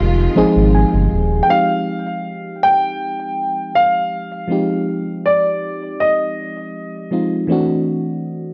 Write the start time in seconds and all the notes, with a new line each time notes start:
Already playing: D#3 F3 G#3 C4 D#4 F4 G4 F5
0.00 F1
0.36 G#1 F3 G#3 C4 D#4 G#4
0.56 G#1
0.75 G#5
0.93 G1
1.13 D#1
1.43 G5
1.47 F3 G#3 C4 D#4 F5
1.52 G4
2.63 G5
3.75 F5
4.48 F3 G#3 C4 D#4
4.52 G4
5.26 D5
6.00 D#5
7.11 F3 G#3 C4 D#4 F4
7.47 E3 A3 C4 D4
7.52 F#4